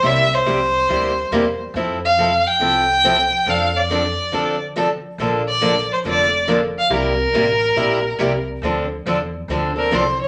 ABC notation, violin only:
X:1
M:4/4
L:1/8
Q:"Swing" 1/4=140
K:Cmix
V:1 name="Violin"
e c6 z | z f2 g4- g | f d4 z3 | z d2 c d2 z f |
B6- B z | [K:Dm] z4 z B c ^c |]